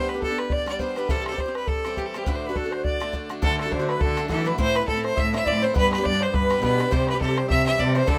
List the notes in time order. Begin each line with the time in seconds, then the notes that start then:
Already playing: G3 B3 D4 G4 C5
0.08 B4, bodhran
0.14 B3 D4 G4
0.21 A4, bodhran
0.28 B3 D4 G4
0.38 B4, bodhran
0.50 D5, bodhran
0.59 bodhran
0.66 G3 B3 D4 G4 D5, bodhran
0.79 G3 B3 D4 G4 C5, bodhran
0.96 G3 B3 D4 G4 B4, bodhran
1.08 C3 E3 G3 C4 G4 A4, bodhran
1.25 A4, bodhran
1.32 G3 C4 G4
1.37 C5, bodhran
1.46 G3 C4 G4
1.55 B4, bodhran
1.67 A4, bodhran
1.84 E3 G3 C4 G4, bodhran
1.97 E3 G3 C4 G4, bodhran
2.05 A4
2.14 E3 G3 C4 G4, bodhran
2.24 D2 A2 D3 A3 D4 B4, bodhran
2.28 F#4
2.35 C5
2.45 F#4 B4
2.49 D3 A3 D4
2.55 A4, bodhran
2.64 D3 A3 D4 F#4
2.71 C5, bodhran
2.84 D5, bodhran
2.93 bodhran
3.00 D3 A3 D4 F#4, bodhran
3.12 D3 A3 D4 F#4, bodhran
3.29 D3 A3 D4 F#4, bodhran
3.42 D2 A2 D3 A3 D4 F#4 A4, bodhran
3.59 A4, bodhran
3.66 D3 A3 D4 F#4
3.71 D3 C5, bodhran
3.79 D3 A3 D4 F#4
3.88 B4, bodhran
4.00 D3 A4, bodhran
4.10 bodhran
4.17 D3 A3 D4 F#4, bodhran
4.28 D3 E3 A3 D4 F#4 A4, bodhran
4.45 D3 A3 D4 F#4 B4
4.58 A2 E3 A3 C4 E4 C5, bodhran
4.75 B4, bodhran
4.80 A3 C4 E4
4.88 A2 A4, bodhran
4.94 A3 C4 E4
5.04 C5, bodhran
5.15 A2 E5, bodhran
5.26 bodhran
5.32 E3 A3 C4 E4 E5, bodhran
5.45 A2 E3 A3 C4 E4 D5, bodhran
5.62 E3 A3 C4 E4 C5
5.74 G2 G3 B3 D4 G4 B4, bodhran
5.92 B4, bodhran
5.98 B3 D4 G4
6.03 G2 D5, bodhran
6.13 B3 D4 G4
6.21 C5, bodhran
6.32 G2 B4, bodhran
6.42 bodhran
6.49 G3 B3 D4 G4, bodhran
6.62 B2 G3 B3 D4 G4 B4, bodhran
6.78 G3 B3 D4 G4 B4, bodhran
6.91 C3 E3 G3 C4 G4 C5, bodhran
7.07 B4, bodhran
7.14 G3 C4 G4
7.20 C3 A4, bodhran
7.28 G3 C4 G4
7.37 C5, bodhran
7.48 C3 E5, bodhran
7.66 E3 G3 C4 G4 E5, bodhran
7.78 C3 E3 G3 C4 G4 D5, bodhran
7.95 E3 G3 C4 G4 C5, bodhran
8.06 D2 A2 D3 A3 D4 F#4 A4, bodhran